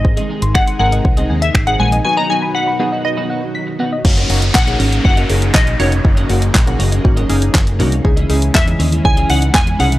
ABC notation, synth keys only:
X:1
M:4/4
L:1/16
Q:1/4=120
K:F#mix
V:1 name="Synth keys"
[G,^B,DG]4 z2 [G,B,DA]4 z3 [G,B,DG]2 z | [F,B,DF] z [F,B,DF]2 z2 [F,B,DG]4 z6 | [A,CDF] z [A,CDF]2 z [A,CDG]2 z [A,CDF] z [A,CDG]2 z2 [A,CDF] z | [A,CDF] z [A,CDF]2 z [A,CDF]2 z [A,CDF] z [A,CDG]2 z2 [A,CDF] z |
[CDEG] z [CDEG]2 z [CDEG]2 z [CDEG] z [CDEG]2 z2 [CDEG] z |]